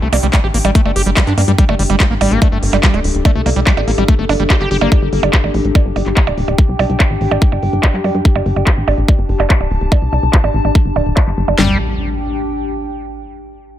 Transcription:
Already playing: D4 G4 G5, downlifter
0.02 C2 A3
0.13 C2 A#3, open hi-hat, percussion blips
0.23 C2 G3, closed hi-hat
0.33 G3, kick, clap, closed hi-hat, percussion blips
0.44 A1 G4
0.54 A1 A#3, open hi-hat
0.65 A1 G3, closed hi-hat, percussion blips
0.75 A3, kick, closed hi-hat
0.85 G1 A3, percussion blips
0.96 G1 G4, open hi-hat
1.06 G1 G3, closed hi-hat
1.17 G3, kick, clap, closed hi-hat, percussion blips
1.27 G2 D4, clap, closed hi-hat
1.38 G2 A#3, open hi-hat, percussion blips
1.48 G2 G3, closed hi-hat
1.58 G3, kick, closed hi-hat
1.69 G1 A3, percussion blips
1.79 G1 G3, open hi-hat
1.90 G1 G3, closed hi-hat, percussion blips
2.00 G3, kick, clap, closed hi-hat
2.10 A1 A#3
2.16 A4
2.21 A1 G3, open hi-hat, percussion blips
2.31 A1 A#3, closed hi-hat
2.42 A3, kick, closed hi-hat, percussion blips
2.52 G1 A3
2.63 G1, open hi-hat
2.73 G1 G3, clap, closed hi-hat, percussion blips
2.83 G3, kick, clap, closed hi-hat
2.94 D1 A3, closed hi-hat, percussion blips
3.04 D1, open hi-hat
3.15 D1, closed hi-hat
3.25 A3, kick, closed hi-hat, percussion blips
3.35 C2 A3
3.46 C2 A#3, open hi-hat, percussion blips
3.56 C2 G3, closed hi-hat
3.67 G3, kick, clap, closed hi-hat
3.77 A1 G4, closed hi-hat, percussion blips
3.88 A1 A#3, open hi-hat
3.98 A1 G3, percussion blips
4.08 A3, kick, closed hi-hat
4.19 G1 A3
4.29 G1 D4, open hi-hat, percussion blips
4.40 G1 G3, closed hi-hat
4.50 G4, kick, clap, closed hi-hat, percussion blips
4.61 G1 G4, clap, closed hi-hat
4.71 G1 G4, open hi-hat
4.81 G1 A#3, closed hi-hat, percussion blips
4.92 kick, closed hi-hat, percussion blips
5.02 G1
5.13 G1, open hi-hat
5.23 G1, closed hi-hat, percussion blips
5.33 kick, clap, closed hi-hat
5.44 A1, percussion blips
5.49 G5
5.54 A1, open hi-hat
5.65 A1, closed hi-hat
5.75 kick, closed hi-hat, percussion blips
5.86 G1
5.96 G1, open hi-hat, percussion blips
6.06 G1, clap, closed hi-hat
6.17 kick, clap, closed hi-hat
6.27 D1, closed hi-hat, percussion blips
6.38 D1, open hi-hat
6.48 D1, closed hi-hat, percussion blips
6.58 kick
6.69 C2
6.79 C2, open hi-hat, percussion blips
6.90 C2, closed hi-hat
7.00 kick, clap, percussion blips
7.10 A1
7.21 A1, open hi-hat
7.31 A1, closed hi-hat, percussion blips
7.42 kick
7.52 G1, percussion blips
7.63 G1, open hi-hat
7.73 G1, closed hi-hat
7.83 kick, clap, percussion blips
7.94 G2, clap, closed hi-hat
8.04 G2, open hi-hat, percussion blips
8.15 G2, closed hi-hat
8.25 kick
8.36 G1, percussion blips
8.46 G1, open hi-hat
8.56 G1, closed hi-hat, percussion blips
8.67 kick, clap
8.77 A1
8.82 A5
8.88 A1, open hi-hat, percussion blips
8.98 A1, closed hi-hat
9.08 kick, percussion blips
9.19 G1
9.29 G1, open hi-hat
9.40 G1, clap, closed hi-hat, percussion blips
9.50 kick, clap
9.61 D1, percussion blips
9.71 D1, open hi-hat
9.81 D1, closed hi-hat
9.92 kick, percussion blips
10.02 C2
10.13 C2, open hi-hat, percussion blips
10.23 C2, closed hi-hat
10.33 kick, clap
10.44 A1, percussion blips
10.54 A1, open hi-hat
10.65 A1, closed hi-hat, percussion blips
10.75 kick
10.86 G1
10.96 D1, open hi-hat, percussion blips
11.06 D1, closed hi-hat
11.17 kick, clap, percussion blips
11.27 G1, clap
11.38 G1, open hi-hat
11.48 G1, closed hi-hat, percussion blips
11.58 G1 G3 D4, snare, impact
11.65 G4
11.71 G5

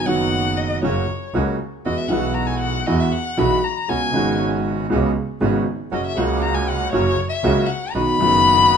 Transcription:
0.04 F#1 F#2 D#3 F#3 B3 D#4 F#4 F#5
0.08 F#4
0.57 D#5
0.82 F#1 F#2 C#3 F#3 A#3 C#4 F#4 C#5
1.34 C#2 C#3 F#3 A#3 C#4 F#4
1.85 E2 E3 G#3 B3 E4 F#4 D#5
1.97 E5
2.08 B1 B2 E3 G#3 B3 E4 F#4 F#5
2.34 A#5
2.47 G#5
2.60 F#5
2.86 E2 E3 G#3 B3 E4 F#4 D#5
3.00 E5
3.12 F#5
3.37 B1 B2 E3 G#3 B3 E4 F#4 B5
3.64 A#5
3.88 C#2 C#3 G#3 B3 C#4 F#4 G#5
4.11 G#1 G#2 C#3 G#3 B3 C#4 F#4
4.16 G#1 F#4
4.90 C#2 C#3 G#3 B3 C#4 F#4
5.41 G#1 G#2 C#3 G#3 B3 C#4 F#4
5.91 F#1 F#2 C#3 F#3 A#3 C#4 F#4 D#5
6.06 E5
6.16 C#2 C#3 F#3 A#3 C#4 F#4 F#5
6.42 A#5
6.55 G#5
6.69 F#5
6.92 F#1 F#2 C#3 F#3 A#3 C#4 F#4 C#5
7.29 E5
7.43 C#2 C#3 F#3 A#3 C#4 F#4
7.66 F#5
7.93 B1 B2 D#3 F#3 B3 D#4 F#4 B5
8.18 F#1 F#2 D#3 F#3 B3 D#4 F#4
8.23 F#4

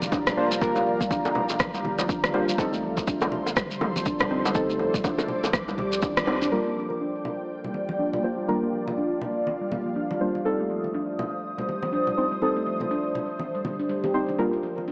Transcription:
Already playing: F1 G3 A#3 D4 F4 G4 A#4 D5 F5 A#5
0.02 F3, high conga, shekere
0.12 D4, kick, low bongo, shekere
0.27 G3, cross-stick, high bongo, low conga, shekere
0.37 G3 A#3 D4 F4 C5
0.51 G3, low bongo, shekere
0.61 G3 A#3 D4 F4 A#4, kick, high conga, shekere
0.76 A#3, low bongo, shekere
0.86 F3
1.01 kick, mid tom, high conga, shekere
1.11 D4, kick, low bongo, shekere
1.25 high bongo, shekere
1.35 low bongo, low conga
1.49 F1, high bongo, shekere
1.60 G1, kick, cross-stick, mid tom, high conga, shekere
1.74 G3, low bongo, shekere
1.85 high conga, low conga
1.99 F3, low bongo, shekere
2.09 D4, kick, shekere
2.24 G3, cross-stick, high conga, shekere
2.34 G3 A#3 D4 F4 C5, low bongo
2.48 G3, high conga, shekere
2.58 A1 C4 D#4 A4 C5 C6, kick, low bongo, shekere
2.73 A3, shekere
2.83 F3
2.97 kick, low bongo, high conga, shekere
3.07 D4, kick, shekere
3.21 high bongo, low bongo, shekere
3.32 low conga
3.46 G1, high bongo, shekere
3.56 kick, cross-stick, mid tom, low bongo, shekere
3.71 G3, shekere
3.81 mid tom, high bongo, low bongo, high conga
3.96 F3, high conga, shekere
4.05 D4, kick, shekere
4.19 G3, cross-stick, high bongo, low bongo, low conga, shekere
4.30 C4 D#4 C5
4.45 G3, low bongo, shekere
4.55 G3 C4 D#4 A4 D6, kick, high conga, shekere
4.70 A3, shekere
4.79 F3, low bongo
4.94 kick, mid tom, high conga, low conga, shekere
5.04 D4, kick, low bongo, shekere
5.18 high bongo, shekere
5.28 low conga
5.43 G1, high bongo, low bongo, shekere
5.53 C2, kick, cross-stick, mid tom, high conga, shekere
5.68 G3, low bongo, shekere
5.78 G3, high conga, low conga
5.92 F3, shekere
6.02 D4, kick, low bongo, shekere
6.17 G3, cross-stick, high conga, shekere
6.27 G3 C4 D#4 C5, low bongo
6.42 D4, high conga, shekere
6.52 G3 A#3 D4 F4 A#4 D5 G5
6.66 A#3
6.76 F3
6.90 high conga
7.01 D4
7.25 low conga
7.64 G3, low conga
7.74 high conga
7.89 F3, high conga
7.99 D4
8.13 G3, low conga
8.24 G3 A#3 D4 F4 C5
8.38 G3
8.48 G3 A#3 D4 F4 A#4 F5, high conga
8.63 A#3
8.73 F3
8.88 high conga, low conga
8.98 D4
9.22 low conga
9.47 high conga
9.61 G3
9.72 high conga, low conga
9.86 F3
9.96 D4
10.11 G3, high conga
10.21 G3 A#3 D4 F4 C5
10.35 G3, high conga
10.45 G3 A3 C4 D#4 A4 C5 D#6
10.60 A3
10.70 F3
10.84 high conga
10.94 D4
11.19 low conga
11.58 G3, low conga
11.69 high conga
11.83 F3, high conga
11.93 D4
12.07 G3, low conga
12.17 C4 D#4 C5
12.32 G3
12.42 G3 C4 D#4 A4, high conga
12.56 A3
12.67 F3
12.80 high conga, low conga
12.91 D4
13.15 low conga
13.39 high conga
13.55 G3
13.65 D3, high conga, low conga
13.80 D4
13.89 G3
14.04 G4, high conga
14.14 C4 D#4 C5
14.29 D4, high conga
14.38 G3 A#3 D4 F4 A#4 D5
14.53 A#3
14.63 F3
14.78 high conga
14.88 D4

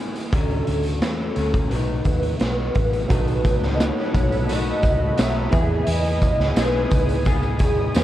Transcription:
Already playing: E3 B3 D#4 G#4
0.16 closed hi-hat
0.33 D2 D3 F#3 A3 C#4 A4, kick, closed hi-hat
0.50 closed hi-hat
0.67 D2, closed hi-hat
0.84 closed hi-hat
1.02 E2 A4, snare, closed hi-hat
1.36 D2 F#3 A3 C#4, closed hi-hat
1.54 kick, closed hi-hat
1.71 B1 B2 F#3 A3 B4, closed hi-hat
1.75 D#4
2.05 D#2, kick, closed hi-hat
2.23 closed hi-hat
2.40 B1, snare, closed hi-hat
2.45 B4
2.75 A1, kick, closed hi-hat
2.93 closed hi-hat
3.08 B1 B2 F#3 A3 B3 D4 A4 F#5 B5 D#6, kick, closed hi-hat, tambourine
3.13 D#4 A4 B4
3.18 D#3
3.27 closed hi-hat
3.45 kick, closed hi-hat, tambourine
3.61 C#2, snare
3.74 D#5
3.80 snare, closed hi-hat, tambourine
3.84 C#5
4.14 B1, kick, closed hi-hat, tambourine
4.32 closed hi-hat, tambourine
4.48 B2 F#3 A3 D#4, closed hi-hat, tambourine
4.53 D#5
4.66 tambourine
4.82 C#2, kick, closed hi-hat, tambourine
5.17 B1 B2 F#3 A3, snare, closed hi-hat, tambourine
5.22 E5
5.50 E2 E3 B3 E4 G#4 G#5 B5, kick, closed hi-hat, tambourine
5.55 G4
5.61 G#4
5.87 E2, closed hi-hat, tambourine
5.92 D#5
6.04 closed hi-hat
6.21 kick, closed hi-hat, tambourine
6.39 C#2, snare
6.56 B1 E3 B3 D#4 G#4, snare, closed hi-hat, tambourine
6.61 B4
6.90 C#2, kick, closed hi-hat, tambourine
7.09 closed hi-hat
7.25 B3 D#4 G#4, kick, closed hi-hat, tambourine
7.29 G#4
7.43 tambourine
7.59 D#2, kick, closed hi-hat, tambourine
7.95 E2 B3 D#4 G#4 B4, snare, closed hi-hat, tambourine

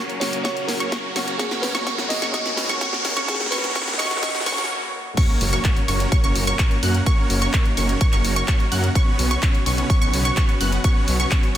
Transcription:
Already playing: A#2 C#3 F#3 A#3 C#4 F#4 G#4 A#4 C#6, riser
0.00 F#4 C#5
0.10 closed hi-hat
0.20 C#3 F#3 A#3 C#4 F#4 A#4 C#5 C#6, snare, open hi-hat
0.33 closed hi-hat
0.44 C#3 F#3 A#3 C#4 F#4 A#4 C#5 C#6, kick, snare, closed hi-hat
0.57 closed hi-hat
0.67 A#4, snare, open hi-hat
0.80 A#3 C#4 F#4 A#4 C#5 C#6, closed hi-hat
0.92 A#3 C#4 F#4 A#4 C#5 C#6, kick, snare, closed hi-hat
1.15 C#3 F#3 A#3 C#4 F#4 A#4 C#5 C#6, snare, open hi-hat
1.28 closed hi-hat
1.38 B2 C#3 F#3 G#3 A#3 C#4 D#4 F#4 G#4 A#4 C#5 C#6, kick, snare, closed hi-hat
1.51 snare, closed hi-hat
1.62 B4, snare, open hi-hat
1.75 A#3 C#4 F#4 A#4 C#5 C#6, snare, closed hi-hat
1.85 C#3 F#3 A#3 C#4 F#4 A#4 C#5 C#6, kick, snare, closed hi-hat
1.98 snare, closed hi-hat
2.09 D#5, snare, open hi-hat
2.22 A#3 C#4 F#4 A#4 C#5 C#6, snare, closed hi-hat
2.33 C#3 F#3 A#3 C#4 F#4 A#4 C#5 D#5 C#6, kick, snare, closed hi-hat
2.46 snare, closed hi-hat
2.56 B4, snare, open hi-hat
2.69 A#3 C#4 F#4 A#4 C#5 C#6, snare, closed hi-hat
2.80 C#3 F#3 A#3 C#4 F#4 A#4 C#5 C#6, kick, snare, closed hi-hat
2.93 snare
3.05 snare, open hi-hat
3.17 A#3 C#4 F#4 A#4 C#5 C#6, snare, closed hi-hat
3.27 C#3 F#3 A#3 C#4 F#4 G#4 A#4 C#5 C#6, kick, snare, closed hi-hat, noise sweep
3.34 snare
3.40 snare, closed hi-hat
3.46 snare
3.51 C#3 F#3 A#3 C#4 F#4 A#4 B4 C#5 C#6, snare, open hi-hat
3.58 snare
3.64 snare, closed hi-hat
3.70 snare
3.74 C#3 F#3 A#3 C#4 F#4 A#4 C#5 C#6, kick, snare, closed hi-hat
3.82 snare
3.88 snare, closed hi-hat
3.94 snare
3.98 C#3 F#3 A#3 C#4 F#4 A#4 C#5 D#5 C#6, snare, open hi-hat
4.05 snare
4.11 snare, closed hi-hat
4.17 snare
4.21 C#3 F#3 A#3 C#4 F#4 A#4 C#5 D#5 C#6, kick, snare, closed hi-hat
4.29 snare
4.35 snare, closed hi-hat
4.41 snare
4.45 C#3 F#3 A#3 C#4 F#4 A#4 B4 C#5 C#6, snare, open hi-hat
4.52 snare
4.58 snare, closed hi-hat
4.64 snare
5.17 A#2 C#3 F#3 A#3 C#4 F#4 A#4 C#5 C#6, kick, closed hi-hat, crash, impact
5.41 F#1, open hi-hat
5.53 A#3 C#4 F#4 A#4 C#5 C#6, closed hi-hat
5.64 A#3 C#4 F#4 A#4 C#5 C#6, kick, clap, closed hi-hat
5.76 closed hi-hat
5.88 F#1 A#3 C#4 F#4 A#4 C#5 C#6, open hi-hat
6.00 closed hi-hat
6.12 A#3 C#4 F#4 A#4 C#5 C#6, kick, closed hi-hat
6.24 F#1 A#3 C#4 F#4 A#4 C#5 C#6, closed hi-hat
6.35 F#1, open hi-hat
6.47 A#3 C#4 F#4 A#4 C#5 C#6, closed hi-hat
6.59 A#3 C#4 F#4 A#4 C#5 C#6, kick, clap, closed hi-hat
6.71 closed hi-hat
6.83 F#2 A#3 C#4 F#4 A#4 F#5 F#6, open hi-hat
6.95 closed hi-hat
7.06 A#3 C#4 D#4 F#4 A#4 C#5 C#6, kick, closed hi-hat
7.30 F#1, open hi-hat
7.42 A#3 C#4 F#4 A#4 C#5 C#6, closed hi-hat
7.53 A#3 C#4 F#4 A#4 C#5 C#6, kick, clap, closed hi-hat
7.65 closed hi-hat
7.77 F#1 A#3 C#4 F#4 A#4 C#5 C#6, open hi-hat
7.89 closed hi-hat
8.01 A#3 C#4 F#4 A#4 C#5 C#6, kick, closed hi-hat
8.12 F#1 A#3 C#4 F#4 A#4 C#5 C#6, clap, closed hi-hat
8.24 F#1, open hi-hat
8.36 A#3 C#4 F#4 A#4 C#5 C#6, closed hi-hat
8.48 A#3 C#4 F#4 A#4 C#5 C#6, kick, clap, closed hi-hat
8.60 closed hi-hat
8.72 F#2 A#3 C#4 F#4 A#4 F#5 F#6, open hi-hat
8.84 closed hi-hat
8.95 B2 B3 C#4 F#4 B4 C#5 C#6, kick, closed hi-hat
9.19 B1, open hi-hat
9.31 B3 C#4 F#4 B4 C#5 C#6, closed hi-hat
9.42 B3 C#4 F#4 B4 C#5 C#6, kick, clap, closed hi-hat
9.55 closed hi-hat
9.66 B1 B3 C#4 F#4 B4 C#5 C#6, open hi-hat
9.78 closed hi-hat
9.90 B3 C#4 F#4 B4 C#5 C#6, kick, closed hi-hat
10.02 B1 B3 C#4 F#4 B4 C#5 C#6, closed hi-hat
10.13 B1, open hi-hat
10.25 B3 C#4 F#4 B4 C#5 C#6, closed hi-hat
10.37 B3 C#4 F#4 B4 C#5 C#6, kick, clap, closed hi-hat
10.49 closed hi-hat
10.60 F#1 B3 C#4 F#4 B4 F#5 F#6, open hi-hat
10.72 closed hi-hat
10.84 B3 C#4 F#4 B4 C#5 C#6, kick, closed hi-hat
11.08 B1, open hi-hat
11.20 B3 C#4 F#4 B4 C#5 C#6, closed hi-hat
11.31 B3 C#4 F#4 B4 C#5 C#6, kick, clap, closed hi-hat
11.43 closed hi-hat

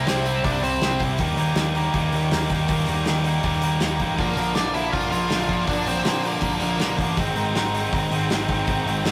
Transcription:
0.07 C2 C3 G3 C4 E4 C5, snare, open hi-hat
0.25 C3 G3 C4 E4, open hi-hat
0.44 C2 C3 G3 C4 D4 E4 D5, kick, open hi-hat
0.62 C2 C3 G3 C4 E4 C5, open hi-hat
0.81 C2 C3 G3 C4 E4, snare, open hi-hat
0.99 C2 C3 G3 C4 E4, kick, open hi-hat
1.18 D#2 D#3 G3 A#3 D#4, kick, open hi-hat
1.36 D#2 D#3 G3 A#3 D#4, open hi-hat
1.55 D#2 D#3 G3 A#3 D#4, snare, open hi-hat
1.75 D#3 G3 A#3 D#4, open hi-hat
1.94 D#2 D#3 G3 A#3 D#4, kick, open hi-hat
2.12 D#2 D#3 G3 A#3 D#4, open hi-hat
2.31 D#2 D#3 G3 A#3 D#4, snare, open hi-hat
2.50 D#2 D#3 G3 A#3 D#4, kick, open hi-hat
2.68 D#2 D#3 G3 A#3 D#4, kick, open hi-hat
2.87 D#2 D#3 G3 A#3 D#4, open hi-hat
3.06 D#2 D#3 G3 A#3 D#4, snare, open hi-hat
3.24 D#3 G3 A#3 D#4, open hi-hat
3.43 D#2 D#3 G3 A#3 D#4, kick, open hi-hat
3.62 D#2 D#3 G3 A#3 D#4, open hi-hat
3.80 D#2 D#3 G3 A#3 D#4, snare, open hi-hat
3.99 A1 D#3 G3 A#3 D#4, kick, open hi-hat
4.18 A#1 A#2 D3 F3 A#3 D4 A#4, kick, open hi-hat
4.37 A#1 A#2 D3 F3 A#3 D4, open hi-hat
4.55 A#1 A#2 D3 F3 A#3 D4 D5, snare, open hi-hat
4.73 A#2 D3 F3 A#3 D4 E4 E5, open hi-hat
4.92 A#1 A#2 D3 F3 A#3 D4 F4 F5, kick, open hi-hat
5.10 A#1 A#2 D3 F3 A#3 D4 F4 F5, open hi-hat
5.30 A#1 A#2 D3 F3 A#3 D4, snare, open hi-hat
5.49 A#1 A#2 D3 F3 A#3 D4, kick, open hi-hat
5.67 A#1 A#2 D3 F3 A#3 D4 D5, kick, open hi-hat
5.86 A#1 A#2 D3 F3 A#3 C4 D4 C5, open hi-hat
6.04 A#1 A#2 D3 F3 A#3 D4, snare, open hi-hat
6.23 A#2 D3 F3 A#3 D4 A#4, open hi-hat
6.41 A#1 A#2 D3 F3 A#3 D4, kick, open hi-hat
6.60 A#1 A#2 D3 F3 A#3 D4, open hi-hat
6.79 A#1 A#2 D3 F3 A#3 D4, snare, open hi-hat
6.99 A1 A#2 D3 F3 A#3 D4, kick, open hi-hat
7.17 G#1 G#2 D#3 G#3 C4 D#4, kick, open hi-hat
7.35 G#1 G#2 D#3 G#3 C4 D#4, open hi-hat
7.53 G#1 G#2 D#3 G#3 C4 D#4, snare, open hi-hat
7.74 G#2 D#3 G#3 C4 D#4, open hi-hat
7.92 G#1 G#2 D#3 G#3 C4 D#4, kick, open hi-hat
8.10 G#1 G#2 D#3 G#3 C4 D#4, open hi-hat
8.30 G#1 G#2 D#3 G#3 C4 D#4, snare, open hi-hat
8.48 G#1 G#2 D#3 G#3 C4 D#4, kick, open hi-hat
8.67 G#1 G#2 D#3 G#3 C4 D#4, kick, open hi-hat
8.86 G#1 G#2 D#3 G#3 C4 D#4, open hi-hat
9.05 G#1 G#2 D#3 G#3 C4 D#4, snare, open hi-hat

